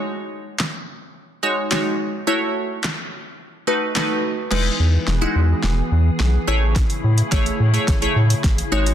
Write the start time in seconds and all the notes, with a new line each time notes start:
Already playing: G#3 D#4 F#4 C#5
0.59 snare, clap
1.43 G#3 D#4 F#4 C#5
1.71 G#3 D#4 F#4 C#5, snare, clap
2.27 A3 E4 F#4 C#5
2.84 snare, clap
3.67 A3 D#4 F#4 B4
3.95 A3 D#4 F#4 B4, snare, clap
4.51 E1 E3 G#3 B3 D#4 E4 G#4 B4, snare, crash
4.80 E2
5.07 E1, snare
5.21 G#3 D#4 E4 F#4
5.35 E2
5.63 E1, snare
5.92 E2
6.20 B1, snare
6.47 A1 C#3 A3 E4 G#4 C#5
6.76 kick, snare, closed hi-hat
6.90 closed hi-hat
7.04 A2
7.18 closed hi-hat
7.32 A1 A3 E4 G#4 C#5, kick, snare, closed hi-hat
7.46 closed hi-hat
7.60 A2
7.74 A3 E4 G#4 C#5, closed hi-hat
7.88 A1, kick, snare, closed hi-hat
8.02 A3 E4 G#4 C#5, closed hi-hat
8.16 A2
8.30 closed hi-hat
8.44 A1, kick, snare, closed hi-hat
8.58 closed hi-hat
8.72 G#1 F#3 G#3 D#4 F#4 C#5
8.86 closed hi-hat